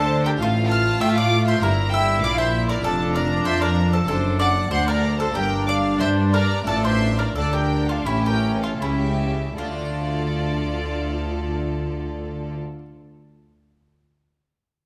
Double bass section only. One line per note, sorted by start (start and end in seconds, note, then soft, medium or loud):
0.00 0.40 D2 loud
0.41 1.01 A1 loud
1.02 1.61 A2 loud
1.62 2.22 G1 loud
2.24 2.85 A#1 medium
2.85 3.45 F1 loud
3.46 4.07 F2 loud
4.08 4.70 F#1 loud
4.71 5.34 D2 medium
5.35 5.99 G1 loud
6.00 6.67 G2 loud
6.67 7.35 A1 loud
7.35 8.05 D2 medium
8.07 8.79 A1 loud
8.80 9.55 C#2 loud
9.57 12.58 D2 medium